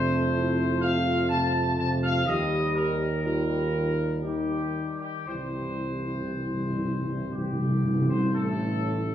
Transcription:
Already playing: tuba F2, trombone section C3 A3, french horn section D4, trumpet section C5
0.36 french horn section E4
0.81 french horn section F4, trumpet section F5
1.29 trombone section C3 A3, trumpet section A5
1.78 trombone section C3, trumpet section A5
2.02 trumpet section F5
2.26 tuba D#2, trombone section D#3 G3, french horn section G4, trumpet section D#5
2.75 trumpet section A#4
3.23 trombone section D#3 G3, french horn section F4, trumpet section A#4
4.23 trombone section D#3 G3, french horn section D#4, trumpet section G4
5.00 trumpet section G4
5.27 tuba C2, timpani C3, trombone section E3 G3, french horn section E4, trumpet section C5
5.35 timpani C3
5.43 timpani C3
5.51 timpani C3
5.59 timpani C3
5.74 timpani C3
5.90 timpani C3
5.98 timpani C3
6.06 timpani C3
6.14 timpani C3
6.22 timpani C3
6.30 timpani C3
6.39 timpani C3
6.46 timpani C3
6.54 timpani C3
6.61 timpani C3
6.70 timpani C3
6.77 timpani C3
6.85 timpani C3
6.93 timpani C3
7.01 timpani C3
7.08 timpani C3
7.15 timpani C3
7.23 timpani C3
7.29 timpani C3, trumpet section G4
7.38 timpani C3
7.45 timpani C3
7.53 timpani C3
7.61 timpani C3
7.69 timpani C3
7.77 timpani C3
7.85 timpani C3
7.93 timpani C3
8.01 timpani C3
8.09 timpani C3, trumpet section C5
8.17 timpani C3
8.25 timpani C3
8.34 tuba A1, trombone section A2, french horn section A3, trumpet section A4

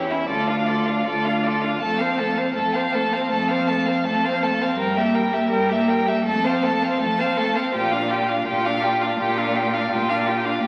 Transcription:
Already playing: cello E2, viola E4, violin G4 C#5
0.09 viola C#4, violin E4 E5
0.28 cello D2, viola F4, violin A4 D5
0.47 viola D4, violin F4 F5
0.66 viola F4, violin A4 D5
0.86 viola D4, violin F4 F5
1.06 cello D2, viola F4, violin A4 D5
1.24 viola D4, violin F4 F5
1.43 viola F4, violin A4 D5
1.62 viola D4, violin F4 F5
1.80 cello F2, viola A3, violin A4 A5
1.98 viola C4, violin C5 F5
2.18 viola A3, violin A4 A5
2.35 viola C4, violin C5 F5
2.54 cello F2, viola A3, violin A4 A5
2.74 viola C4, violin C5 F5
2.92 viola A3, violin A4 A5
3.13 viola C4, violin C5 F5
3.31 cello F2, viola A3, violin A4 A5
3.48 viola C4, violin C5 F5
3.67 viola A3, violin A4 A5
3.86 viola C4, violin C5 F5
4.05 cello F2, viola A3, violin A4 A5
4.24 viola C4, violin C5 F5
4.43 viola A3, violin A4 A5
4.61 viola C4, violin C5 F5
4.78 cello G2, viola G3, violin A#4 G5
4.96 viola A#3, violin G4 E5
5.14 viola G3, violin A#4 G5
5.32 viola A#3, violin G4 E5
5.50 cello G2, viola G3, violin A#4 G5
5.70 viola A#3, violin G4 E5
5.88 viola G3, violin A#4 G5
6.06 viola A#3, violin G4 E5
6.25 cello F2, viola A3, violin A4 A5
6.45 viola C4, violin C5 F5
6.63 viola A3, violin A4 A5
6.83 viola C4, violin C5 F5
7.01 cello F2, viola A3, violin A4 A5
7.19 viola C4, violin C5 F5
7.37 viola A3, violin A4 A5
7.56 viola C4, violin C5 F5
7.74 cello A#2, viola F4, violin G4 G5
7.91 viola D4, violin F4 F5
8.10 viola F4, violin G4 G5
8.27 viola D4, violin F4 F5
8.46 cello A#2, viola F4, violin G4 G5
8.65 viola D4, violin F4 F5
8.83 viola F4, violin G4 G5
9.01 viola D4, violin F4 F5
9.19 cello A#2, viola F4, violin G4 G5
9.37 viola D4, violin F4 F5
9.55 viola F4, violin G4 G5
9.73 viola D4, violin F4 F5
9.91 cello A#2, viola F4, violin G4 G5
10.09 viola D4, violin F4 F5
10.26 viola F4, violin G4 G5
10.44 viola D4, violin F4 F5
10.63 cello A#2, viola A#3, violin G4 G5

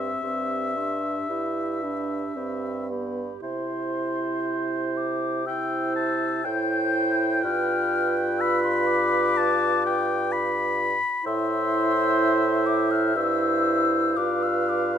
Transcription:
Already playing: bassoon G2, french horn C4, clarinet G4, oboe E5, flute C6
0.21 bassoon G2, french horn C4, clarinet G4, flute C6
0.75 french horn D4, clarinet G4, flute C6
1.29 bassoon G2, french horn E4, clarinet G4, flute B5
1.82 french horn D4, clarinet G4, flute B5
2.36 bassoon G2, french horn C4, clarinet G4, flute B5
2.89 french horn B3, clarinet G4, flute B5
3.41 bassoon C3, french horn E4, clarinet C5, flute C6
4.97 flute D6
5.46 french horn E4, clarinet C5, oboe G5, flute E6
5.96 oboe A5
6.44 bassoon A2, french horn E4, clarinet C5, oboe G5, flute G6
7.43 bassoon G2, french horn F4, clarinet B4, flute F6
8.38 oboe B5, flute E6
8.63 flute C6
8.87 flute D6
9.37 oboe A5
9.86 oboe G5
10.32 oboe B5
11.24 bassoon A2, french horn E4, clarinet C5, oboe E5, flute C6
12.66 flute D6
12.91 flute F6
13.16 bassoon G2, french horn E4, clarinet C5, flute E6
14.17 bassoon G2, french horn F4, clarinet B4, oboe F5, flute D6
14.43 flute E6
14.69 flute D6

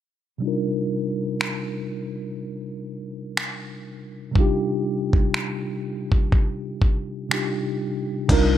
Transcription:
0.38 tine electric piano C3 G3 D4
0.44 tine electric piano D#4 F4 A#4
1.41 finger snap
3.37 finger snap
4.31 tine electric piano C3 G3 D4
4.36 tine electric piano D#4 F4, kick
4.40 tine electric piano G4
5.13 kick
5.34 finger snap
6.12 kick
6.32 kick
6.82 kick
7.29 tine electric piano C3 G3 D4 D#4 F4, finger snap
7.33 tine electric piano G4
8.28 808-style bass C2, tine electric piano C3 G3 D4 D#4 F4, kick, closed hi-hat, crash
8.32 tine electric piano A#4

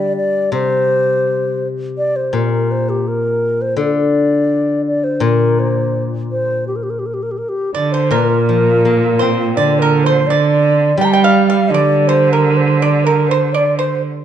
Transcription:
Already playing: guzheng D3 G3, xiao D5
0.17 xiao D5
0.52 guzheng C3, xiao C5
1.98 xiao D5
2.16 xiao C5
2.33 guzheng A#2, xiao A#4
2.71 xiao C5
2.89 xiao G4
3.08 xiao A#4
3.62 xiao C5
3.77 guzheng D3, xiao D5
4.87 xiao D5
5.04 xiao C5
5.20 guzheng A#2, xiao A#4
5.59 xiao C5
6.32 xiao C5
6.68 xiao G4
6.76 xiao A#4
6.83 xiao G4
6.90 xiao A#4
6.99 xiao G4
7.06 xiao A#4
7.14 xiao G4
7.23 xiao A#4
7.31 xiao G4
7.38 xiao A#4
7.49 xiao G4
7.74 cello D3, pipa D5, xiao D5
7.92 xiao C5, pipa C5
8.10 guzheng A#2, cello A#2, xiao A#4, pipa A#4
8.49 guzheng F3
8.85 guzheng A#3
9.19 guzheng C4, pipa C5
9.56 cello D3, xiao D5, pipa D5
9.79 xiao A#4, pipa A#4
10.04 xiao C5, pipa C5
10.27 cello D3, xiao D5, pipa D5
10.97 guzheng G3, cello G3, xiao G5, pipa G5
11.05 xiao A#5
11.12 xiao G5, pipa G5
11.24 xiao F5, pipa F5
11.47 xiao F5, pipa F5
11.71 cello D3, xiao D5, pipa D5
12.08 xiao C5, pipa C5
12.33 xiao A#4, pipa A#4
12.57 xiao C5
12.81 xiao D5, pipa D5
13.05 xiao A#4, pipa A#4
13.29 xiao C5, pipa C5
13.53 xiao D5, pipa D5
13.78 xiao C5, pipa C5

